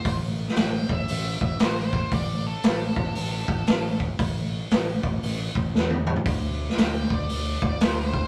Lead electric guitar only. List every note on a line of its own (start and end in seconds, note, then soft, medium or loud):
0.00 0.15 C5 medium
0.59 0.92 G5 medium
0.93 1.43 E5 medium
1.46 1.61 E5 medium
1.62 1.78 C5 medium
1.80 2.12 C5 medium
2.14 2.47 D5 medium
2.47 3.98 A4 medium
6.80 7.12 G5 medium
7.14 7.63 D5 medium
7.67 7.83 D5 medium
7.83 7.99 C5 medium
8.00 8.28 C5 medium